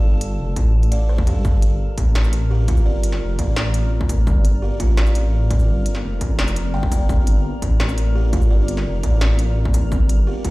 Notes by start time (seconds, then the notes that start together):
Already playing: A4 D5
0.04 G1
0.21 closed hi-hat
0.39 F1
0.56 A1, kick, closed hi-hat
0.83 closed hi-hat
0.92 D5, closed hi-hat
1.09 C5
1.18 kick
1.27 G2 G4, kick, closed hi-hat
1.45 G1 C4 A#4, kick, shaker
1.62 F4, closed hi-hat
1.92 A#4
1.98 A1, kick, closed hi-hat
2.10 D5
2.15 snare
2.24 shaker
2.33 closed hi-hat
2.51 G4
2.68 F4, kick, closed hi-hat
2.77 shaker
2.86 G1 D5
3.03 closed hi-hat
3.12 snare
3.21 F1
3.39 A1 D5, kick, closed hi-hat
3.56 snare
3.74 closed hi-hat
4.01 kick
4.09 kick, closed hi-hat, shaker
4.27 G1, kick, shaker
4.45 closed hi-hat
4.62 G4
4.80 A1 F4, kick, closed hi-hat
4.97 D5, snare
5.07 shaker
5.15 closed hi-hat
5.50 D5, kick, closed hi-hat
5.60 shaker
5.68 G1
5.86 closed hi-hat
5.95 snare
6.04 F1
6.21 A1, kick, closed hi-hat
6.39 F1, snare
6.48 closed hi-hat, shaker
6.56 closed hi-hat
6.74 G1 G5
6.83 kick
6.92 D5, kick, closed hi-hat, shaker
7.09 G1, kick, shaker
7.27 closed hi-hat
7.62 A1, kick, closed hi-hat
7.80 snare
7.89 shaker
7.98 closed hi-hat
8.15 G4
8.33 F4, kick, closed hi-hat
8.42 shaker
8.50 G1 D5
8.68 closed hi-hat
8.77 snare
8.86 F1
9.03 A1 D5, kick, closed hi-hat
9.21 snare
9.39 closed hi-hat
9.65 kick
9.74 kick, closed hi-hat, shaker
9.92 G1, kick, shaker
10.09 closed hi-hat
10.27 G4
10.45 A1 F4, kick, closed hi-hat